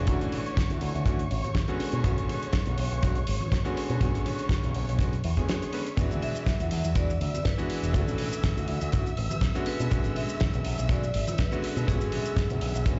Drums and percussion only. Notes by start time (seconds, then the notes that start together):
0.07 kick, closed hi-hat, tambourine, high conga
0.21 closed hi-hat, tambourine
0.32 open hi-hat, tambourine, low conga
0.46 closed hi-hat, tambourine
0.57 kick, snare, closed hi-hat, tambourine
0.70 closed hi-hat, tambourine, high conga
0.81 open hi-hat, tambourine
0.95 closed hi-hat, tambourine
1.06 kick, closed hi-hat, tambourine
1.19 closed hi-hat, tambourine
1.31 open hi-hat, tambourine
1.44 closed hi-hat, tambourine, high conga
1.55 kick, snare, closed hi-hat, tambourine
1.68 closed hi-hat, tambourine
1.80 open hi-hat, tambourine
1.92 closed hi-hat, tambourine
2.04 kick, closed hi-hat, tambourine, high conga
2.18 closed hi-hat, tambourine
2.29 open hi-hat, tambourine, low conga
2.42 closed hi-hat, tambourine
2.53 kick, snare, closed hi-hat, tambourine
2.66 closed hi-hat, tambourine, high conga
2.78 open hi-hat, tambourine
2.91 closed hi-hat, tambourine
3.03 kick, closed hi-hat, tambourine
3.15 closed hi-hat, tambourine
3.27 open hi-hat, tambourine
3.40 closed hi-hat, tambourine, high conga
3.52 kick, snare, closed hi-hat, tambourine
3.65 closed hi-hat, tambourine
3.77 open hi-hat, tambourine
3.90 closed hi-hat, tambourine
4.01 kick, closed hi-hat, tambourine, high conga
4.14 closed hi-hat, tambourine
4.25 open hi-hat, tambourine, low conga
4.38 closed hi-hat, tambourine
4.49 kick, snare, closed hi-hat, tambourine
4.63 closed hi-hat, tambourine, high conga
4.74 open hi-hat, tambourine
4.88 closed hi-hat, tambourine
4.99 kick, closed hi-hat, tambourine
5.13 closed hi-hat, tambourine
5.24 open hi-hat, tambourine
5.37 kick, closed hi-hat, tambourine, high conga
5.49 snare, closed hi-hat, tambourine
5.62 closed hi-hat, tambourine
5.73 open hi-hat, tambourine
5.86 closed hi-hat, tambourine
5.97 kick, closed hi-hat, tambourine, high conga, shaker
6.11 closed hi-hat, tambourine, shaker
6.22 open hi-hat, tambourine, low conga
6.35 closed hi-hat, tambourine, shaker
6.46 kick, snare, closed hi-hat, tambourine, shaker
6.60 closed hi-hat, tambourine, high conga, shaker
6.71 open hi-hat, tambourine
6.84 closed hi-hat, tambourine, shaker
6.95 kick, closed hi-hat, tambourine, shaker
7.10 closed hi-hat, shaker
7.21 open hi-hat, tambourine
7.33 closed hi-hat, tambourine, high conga, shaker
7.45 kick, snare, closed hi-hat, tambourine, shaker
7.58 closed hi-hat, tambourine, shaker
7.69 open hi-hat, tambourine
7.83 closed hi-hat, tambourine, shaker
7.94 kick, closed hi-hat, tambourine, high conga, shaker
8.08 closed hi-hat, tambourine, shaker
8.18 open hi-hat, tambourine, low conga
8.32 closed hi-hat, tambourine, shaker
8.43 kick, snare, closed hi-hat, tambourine, shaker
8.57 closed hi-hat, tambourine, high conga, shaker
8.68 open hi-hat, tambourine
8.81 closed hi-hat, tambourine, shaker
8.92 kick, closed hi-hat, tambourine, shaker
9.05 closed hi-hat, tambourine, shaker
9.17 open hi-hat, tambourine
9.30 closed hi-hat, tambourine, high conga, shaker
9.41 kick, snare, closed hi-hat, tambourine, shaker
9.55 closed hi-hat, shaker
9.66 open hi-hat, tambourine
9.79 closed hi-hat, tambourine, shaker
9.91 kick, closed hi-hat, tambourine, high conga, shaker
10.04 closed hi-hat, tambourine, shaker
10.16 open hi-hat, tambourine, low conga
10.29 closed hi-hat, tambourine, shaker
10.40 kick, snare, closed hi-hat, tambourine, shaker
10.53 closed hi-hat, tambourine, high conga, shaker
10.64 open hi-hat, tambourine
10.78 closed hi-hat, tambourine, shaker
10.89 kick, closed hi-hat, tambourine, shaker
11.03 closed hi-hat, shaker
11.14 open hi-hat, tambourine
11.27 closed hi-hat, tambourine, high conga, shaker
11.38 kick, snare, closed hi-hat, tambourine, shaker
11.51 closed hi-hat, tambourine, shaker
11.62 open hi-hat, tambourine
11.76 closed hi-hat, shaker
11.88 kick, closed hi-hat, tambourine, high conga, shaker
12.01 closed hi-hat, tambourine, shaker
12.12 open hi-hat, tambourine, low conga
12.25 closed hi-hat, tambourine, shaker
12.37 kick, snare, closed hi-hat, tambourine, shaker
12.50 closed hi-hat, tambourine, high conga, shaker
12.61 open hi-hat, tambourine
12.74 closed hi-hat, tambourine, shaker
12.86 kick, closed hi-hat, tambourine, shaker